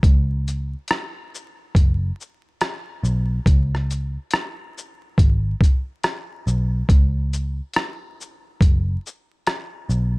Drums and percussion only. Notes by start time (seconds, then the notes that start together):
0.03 kick, closed hi-hat
0.48 closed hi-hat, shaker
0.88 cross-stick, closed hi-hat
1.35 shaker
1.75 kick, closed hi-hat
2.21 shaker
2.61 cross-stick, closed hi-hat
3.05 shaker
3.46 kick, closed hi-hat
3.75 cross-stick
3.91 closed hi-hat, shaker
4.31 cross-stick, closed hi-hat
4.78 shaker
5.18 kick, closed hi-hat
5.61 kick, closed hi-hat, shaker
6.03 cross-stick, closed hi-hat
6.47 shaker
6.89 kick, closed hi-hat
7.33 closed hi-hat, shaker
7.73 cross-stick, closed hi-hat
8.21 shaker
8.61 kick, closed hi-hat
9.07 shaker
9.47 cross-stick, closed hi-hat
9.90 shaker